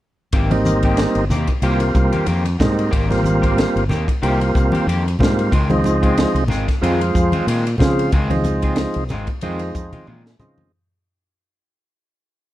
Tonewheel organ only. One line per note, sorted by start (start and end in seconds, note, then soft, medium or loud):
0.51 1.25 G3 medium
0.51 1.24 A#3 medium
0.51 1.25 C4 medium
0.51 1.25 D#4 medium
1.63 2.27 G3 medium
1.63 2.27 A#3 medium
1.63 2.27 C4 medium
1.63 2.27 F4 medium
2.60 2.92 G3 medium
2.60 2.92 A#3 medium
2.60 2.92 C4 medium
2.60 2.92 D#4 medium
3.10 3.84 G3 medium
3.10 3.84 A#3 medium
3.10 3.84 C4 medium
3.10 3.84 F4 medium
4.23 4.87 G3 medium
4.23 4.87 A#3 medium
4.23 4.87 C4 medium
4.23 4.87 F4 medium
5.20 5.52 G3 medium
5.20 5.52 A#3 medium
5.20 5.52 C4 medium
5.20 5.52 F4 medium
5.70 6.44 F3 medium
5.70 6.44 G#3 medium
5.70 6.44 C4 medium
5.70 6.44 D#4 medium
6.82 7.46 F3 medium
6.82 7.46 G#3 medium
6.82 7.47 C4 medium
6.82 7.46 F4 medium
7.79 8.12 F3 medium
7.79 8.12 G#3 medium
7.79 8.12 C4 medium
7.79 8.12 F4 medium
8.30 9.04 F3 medium
8.30 9.04 G#3 medium
8.30 9.04 C4 medium
8.30 9.04 D#4 medium
9.43 10.07 F3 medium
9.43 10.07 G#3 medium
9.43 10.07 C4 medium
9.43 10.07 D#4 medium
10.40 10.72 F3 medium
10.40 10.72 G#3 medium
10.40 10.72 C4 medium
10.40 10.72 D#4 medium